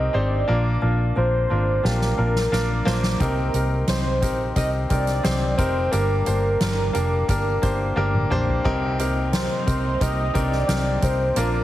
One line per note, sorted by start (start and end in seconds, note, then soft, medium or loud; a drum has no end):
0.00 0.13 C4 medium
0.00 0.14 D#4 medium
0.00 0.14 G4 medium
0.00 0.48 A#4 medium
0.00 0.14 C5 medium
0.00 0.16 D#5 loud
0.13 0.42 G#1 medium
0.13 0.41 C4 medium
0.13 0.42 D#4 medium
0.13 0.42 G4 medium
0.13 0.42 C5 medium
0.13 0.83 D5 medium
0.48 0.77 A#1 medium
0.48 1.46 A#2 medium
0.48 0.75 A#3 medium
0.48 0.76 D4 medium
0.48 0.76 F4 medium
0.48 0.76 A#4 medium
0.82 1.10 A#1 medium
0.82 1.10 A#3 medium
0.82 1.10 D4 medium
0.82 1.10 F4 medium
0.82 1.10 A#4 medium
1.16 1.45 A#1 medium
1.16 1.44 A#3 medium
1.16 1.44 D4 medium
1.16 1.44 F4 medium
1.16 1.44 A#4 medium
1.16 1.87 C5 loud
1.50 1.79 G#1 medium
1.50 1.78 A#3 medium
1.50 1.78 D4 medium
1.50 1.78 F4 medium
1.50 1.78 A#4 medium
1.84 2.12 A#1 loud
1.84 2.11 A#3 medium
1.84 2.12 D4 medium
1.84 2.12 F4 medium
1.84 2.12 G4 medium
1.84 2.87 A#4 loud
1.84 snare soft
2.01 snare soft
2.18 2.46 A#1 medium
2.18 2.46 A#3 medium
2.18 2.46 D4 medium
2.18 2.46 F4 medium
2.18 2.46 A#4 medium
2.36 snare medium
2.52 2.80 A#1 medium
2.52 2.80 A#3 medium
2.52 2.80 D4 medium
2.52 2.80 F4 medium
2.52 2.80 A#4 medium
2.52 snare medium
2.85 3.14 A#1 medium
2.85 3.13 A#3 loud
2.85 3.14 D4 medium
2.85 3.14 F4 medium
2.85 3.14 C5 loud
2.85 snare medium
3.03 snare medium
3.20 3.48 C2 medium
3.20 4.19 C3 medium
3.20 3.48 C4 medium
3.20 3.48 D#4 medium
3.20 3.48 G4 medium
3.20 3.48 A#4 medium
3.20 3.85 A#4 medium
3.20 kick medium
3.20 closed hi-hat medium
3.54 3.82 C2 medium
3.54 3.82 C4 medium
3.54 3.82 D#4 medium
3.54 3.82 G4 medium
3.54 3.82 A#4 medium
3.54 closed hi-hat medium
3.88 4.22 C2 medium
3.88 4.16 C4 medium
3.88 4.16 D#4 medium
3.88 4.16 G4 medium
3.88 4.53 C5 medium
3.88 4.17 C5 medium
3.88 snare loud
3.88 closed hi-hat medium
4.22 4.50 A#1 medium
4.22 4.50 C4 medium
4.22 4.50 D#4 medium
4.22 4.50 G4 medium
4.22 4.50 A#4 medium
4.22 kick medium
4.22 closed hi-hat medium
4.56 4.84 C2 medium
4.56 4.84 C4 medium
4.56 4.84 D#4 medium
4.56 4.84 G4 medium
4.56 4.84 A#4 medium
4.56 4.70 D#5 loud
4.56 kick medium
4.56 closed hi-hat medium
4.89 5.19 C2 medium
4.89 5.18 C4 medium
4.89 5.18 D#4 medium
4.89 5.18 G4 medium
4.89 5.18 A#4 medium
4.89 5.54 D5 loud
4.89 kick medium
4.89 closed hi-hat medium
5.07 snare soft
5.07 closed hi-hat soft
5.23 5.53 C2 medium
5.23 5.51 C4 medium
5.23 5.52 D#4 medium
5.23 5.52 G4 medium
5.23 5.52 C5 medium
5.23 snare loud
5.23 closed hi-hat medium
5.57 5.86 F1 medium
5.57 5.86 C4 medium
5.57 5.86 D#4 medium
5.57 5.86 G4 medium
5.57 5.86 A#4 medium
5.57 5.93 C5 medium
5.57 kick medium
5.57 closed hi-hat medium
5.91 6.21 G1 medium
5.91 6.90 G2 medium
5.91 6.20 A#3 medium
5.91 6.20 D4 medium
5.91 6.20 G4 medium
5.91 8.30 A#4 medium
5.91 6.20 A#4 medium
5.91 closed hi-hat medium
6.26 6.55 G1 medium
6.26 6.54 A#3 medium
6.26 6.54 D4 medium
6.26 6.54 G4 medium
6.26 6.54 C5 medium
6.26 closed hi-hat medium
6.60 6.89 G1 medium
6.60 6.88 A#3 medium
6.60 6.88 D4 medium
6.60 6.88 G4 medium
6.60 6.89 A#4 medium
6.60 snare loud
6.60 closed hi-hat medium
6.93 7.23 F1 medium
6.93 7.22 A#3 medium
6.93 7.22 D4 medium
6.93 7.22 G4 medium
6.93 7.22 A#4 medium
6.93 closed hi-hat medium
7.29 7.57 G1 medium
7.29 7.56 A#3 medium
7.29 7.57 D4 medium
7.29 7.57 G4 medium
7.29 7.57 A#4 medium
7.29 kick medium
7.29 closed hi-hat medium
7.62 7.91 G1 medium
7.62 7.90 A#3 medium
7.62 7.90 D4 medium
7.62 7.90 G4 medium
7.62 7.90 C5 medium
7.62 kick medium
7.62 closed hi-hat medium
7.96 8.25 G1 medium
7.96 8.24 A#3 medium
7.96 8.24 D4 medium
7.96 8.24 G4 medium
7.96 8.24 A#4 loud
7.96 high tom soft
8.14 mid tom soft
8.30 8.59 A#1 medium
8.30 8.58 A#3 medium
8.30 8.58 D4 medium
8.30 8.58 G4 medium
8.30 8.59 C5 loud
8.30 mid tom medium
8.48 floor tom medium
8.64 9.46 C2 medium
8.64 9.63 C3 medium
8.64 11.34 C3 medium
8.64 11.34 G3 medium
8.64 11.64 A#3 medium
8.64 8.92 C4 loud
8.64 11.64 C4 medium
8.64 8.92 D#4 medium
8.64 11.34 D#4 medium
8.64 8.92 G4 medium
8.64 8.93 A#4 loud
8.64 kick medium
8.64 crash medium
8.99 9.26 C4 medium
8.99 9.26 D#4 medium
8.99 9.27 G4 medium
8.99 9.27 A#4 medium
8.99 closed hi-hat medium
9.32 9.60 C4 medium
9.32 9.60 D#4 medium
9.32 9.60 G4 medium
9.32 9.60 A#4 medium
9.32 10.03 C5 medium
9.32 snare loud
9.32 closed hi-hat medium
9.66 9.95 C2 medium
9.66 9.94 C4 medium
9.66 9.94 D#4 medium
9.66 9.94 G4 medium
9.66 9.94 A#4 medium
9.66 kick medium
9.66 closed hi-hat medium
10.00 10.29 C2 medium
10.00 10.28 C4 medium
10.00 10.28 D#4 medium
10.00 10.28 G4 medium
10.00 10.29 A#4 medium
10.00 10.37 D#5 loud
10.00 kick medium
10.00 closed hi-hat medium
10.34 10.63 C2 medium
10.34 10.62 C4 medium
10.34 10.62 D#4 medium
10.34 10.62 G4 medium
10.34 10.62 A#4 medium
10.34 11.05 D5 loud
10.34 kick medium
10.34 closed hi-hat medium
10.52 snare soft
10.68 10.96 C2 medium
10.68 10.96 C4 medium
10.68 10.96 D#4 medium
10.68 10.96 G4 medium
10.68 10.96 A#4 medium
10.68 snare medium
10.68 closed hi-hat medium
11.02 11.31 C2 medium
11.02 11.30 C4 medium
11.02 11.30 D#4 medium
11.02 11.30 G4 medium
11.02 11.31 A#4 medium
11.02 11.37 C5 medium
11.02 kick medium
11.02 closed hi-hat medium
11.36 11.64 A#1 medium
11.36 11.64 A#2 medium
11.36 11.64 F3 medium
11.36 11.64 A#3 medium
11.36 11.64 D4 medium
11.36 11.64 F4 medium
11.36 11.64 A#4 medium
11.36 closed hi-hat medium